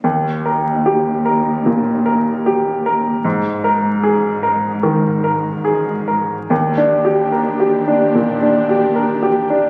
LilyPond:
<<
  \new Staff \with { instrumentName = "Grand piano" } { \time 4/4 \key ees \major \tempo 4 = 75 ees,8 bes'8 g'8 bes'8 bes,8 bes'8 g'8 bes'8 | aes,8 bes'8 aes'8 bes'8 ees8 bes'8 aes'8 bes'8 | \tuplet 3/2 { ees,8 d'8 g'8 bes'8 g'8 d'8 bes,8 d'8 g'8 bes'8 g'8 d'8 } | }
  \new Staff \with { instrumentName = "Viola section" } { \time 4/4 \key ees \major r1 | r1 | <d' g'>1 | }
  \new Staff \with { instrumentName = "Cello section" } { \clef bass \time 4/4 \key ees \major ees,1 | aes,2.~ aes,8. r16 | ees,1 | }
>>